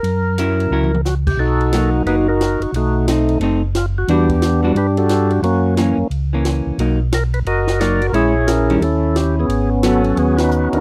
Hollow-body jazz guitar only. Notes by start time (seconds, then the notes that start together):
0.38 F#3 C#4 E4 A#4
0.72 F#3 C#4 E4 A#4
1.73 F#3 A#3 D#4
2.07 F#3 A#3 D#4
3.08 A3 C4 D#4
3.42 A3 C4 D#4
4.09 E3 G3 D4 F#4
4.63 E3 G3 D4 F#4
5.77 E3 A#3 C#4
6.33 E3 A#3 C#4
6.80 F#3 A#3 D#4
7.81 F#3 A#3 D#4
8.13 G#3 C#4 E4
8.70 D#3 G3 C#4 E4
9.83 F#3 B3 C#4